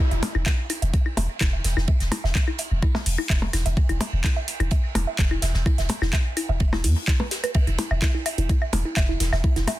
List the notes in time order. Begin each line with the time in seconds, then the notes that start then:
0.11 E1 E5, closed hi-hat
0.22 snare, open hi-hat, ride, percussion blips
0.35 E1 E4, claves
0.46 E5, kick, snare, clap, ride
0.69 E4, open hi-hat, ride, claves
0.82 E1 E5, closed hi-hat
0.93 kick, closed hi-hat, ride
1.06 E4, claves
1.17 E1 E5, open hi-hat, ride, percussion blips
1.40 E1 E4, kick, snare, clap, closed hi-hat, ride, claves
1.53 E5
1.64 E1, snare, open hi-hat, ride
1.77 E1 E4, snare, claves
1.88 E5, kick, ride
2.00 E1, snare, closed hi-hat
2.11 E4, snare, open hi-hat, ride, percussion blips, claves
2.24 E1 E5, snare
2.35 kick, snare, clap, ride
2.48 E4, claves
2.58 E5, open hi-hat, ride
2.71 E1
2.82 E4, kick, ride, claves
2.95 E5, snare, percussion blips
3.06 E1, open hi-hat
3.18 E4, claves
3.30 E1 E5, kick, snare, clap
3.42 ride, percussion blips
3.53 E1 E4, snare, open hi-hat, ride, claves
3.66 E1 E5, closed hi-hat
3.77 kick, ride
3.89 E1 E4, closed hi-hat, claves
4.00 E5, snare, open hi-hat, ride, percussion blips
4.13 E1
4.24 E4, kick, snare, clap, ride, claves
4.36 E5
4.48 open hi-hat, ride
4.60 E1 E4, closed hi-hat, claves
4.71 E5, kick, closed hi-hat, ride
4.95 E1 E4, open hi-hat, ride, percussion blips, claves
5.07 E5
5.18 E1, kick, snare, clap, closed hi-hat, ride
5.31 E4, claves
5.42 E1 E5, snare, open hi-hat, ride
5.54 E1, snare
5.66 E4, kick, ride, claves
5.78 E1 E5, snare, closed hi-hat
5.89 snare, open hi-hat, ride, percussion blips
6.02 E1 E4, snare, claves
6.13 E5, kick, snare, clap, ride
6.37 E4, open hi-hat, ride, claves
6.49 E1 E5
6.60 kick, ride
6.72 E4, snare, percussion blips, claves
6.84 E2 E4, open hi-hat
7.07 E4, kick, snare, clap, ride, claves
7.19 B4, ride, percussion blips
7.31 G4, snare, open hi-hat, ride
7.44 B4, closed hi-hat, claves
7.54 E5, kick, ride, claves
7.67 E1 E4, closed hi-hat
7.78 E4, snare, open hi-hat, ride, percussion blips
7.91 E1 E5, claves
8.02 E4, kick, snare, clap, ride
8.14 E4
8.26 E5, open hi-hat, ride, claves
8.38 E1 E4, closed hi-hat
8.49 E4, kick, closed hi-hat, ride
8.62 E5, claves
8.73 E1 E4, open hi-hat, ride, percussion blips
8.85 E4
8.96 E1 E5, kick, snare, clap, closed hi-hat, ride, claves
9.09 E4
9.20 E1 E4, snare, open hi-hat, ride
9.32 E1 E5, snare, claves
9.44 E4, kick, ride
9.56 E1 E4, snare, closed hi-hat
9.67 E5, snare, open hi-hat, ride, percussion blips, claves